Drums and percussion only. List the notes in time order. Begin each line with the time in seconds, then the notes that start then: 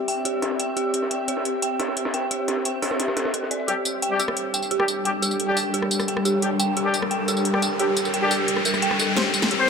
0.08 closed hi-hat, open hi-hat
0.17 closed hi-hat
0.25 closed hi-hat
0.42 snare, closed hi-hat
0.51 snare
0.60 closed hi-hat
0.77 closed hi-hat
0.94 closed hi-hat
1.02 snare
1.11 closed hi-hat
1.28 closed hi-hat
1.37 snare
1.45 closed hi-hat
1.62 closed hi-hat
1.80 snare, closed hi-hat
1.88 snare
1.97 closed hi-hat
2.05 snare, closed hi-hat
2.14 snare, closed hi-hat
2.22 closed hi-hat
2.31 closed hi-hat
2.48 snare, closed hi-hat
2.57 snare
2.65 closed hi-hat
2.82 snare, closed hi-hat, open hi-hat
2.91 snare, closed hi-hat
3.00 snare, closed hi-hat
3.08 snare, closed hi-hat
3.17 snare, closed hi-hat
3.25 snare, closed hi-hat
3.34 closed hi-hat
3.42 snare
3.51 closed hi-hat
3.60 closed hi-hat
3.68 closed hi-hat
3.85 closed hi-hat, tambourine
4.02 closed hi-hat
4.20 closed hi-hat, tambourine
4.28 cross-stick
4.37 closed hi-hat
4.54 closed hi-hat, tambourine
4.62 tambourine
4.71 closed hi-hat
4.80 cross-stick
4.88 closed hi-hat, tambourine
5.05 closed hi-hat
5.22 closed hi-hat, tambourine
5.31 tambourine
5.40 closed hi-hat
5.57 open hi-hat, tambourine
5.74 closed hi-hat
5.82 cross-stick
5.91 closed hi-hat, tambourine
6.00 cross-stick, tambourine
6.08 closed hi-hat
6.17 cross-stick
6.25 closed hi-hat, tambourine
6.42 closed hi-hat
6.60 closed hi-hat, tambourine
6.77 closed hi-hat
6.94 closed hi-hat, tambourine
7.02 cross-stick
7.11 closed hi-hat
7.28 closed hi-hat, tambourine
7.37 tambourine
7.45 closed hi-hat
7.54 cross-stick
7.62 closed hi-hat, tambourine
7.79 closed hi-hat
7.97 closed hi-hat, tambourine
8.05 tambourine
8.14 closed hi-hat
8.31 open hi-hat, tambourine
8.48 closed hi-hat
8.57 cross-stick
8.65 closed hi-hat, tambourine
8.74 cross-stick, tambourine
8.82 closed hi-hat
8.91 cross-stick
8.99 closed hi-hat, tambourine
9.17 snare, closed hi-hat
9.34 closed hi-hat, tambourine
9.42 snare
9.51 closed hi-hat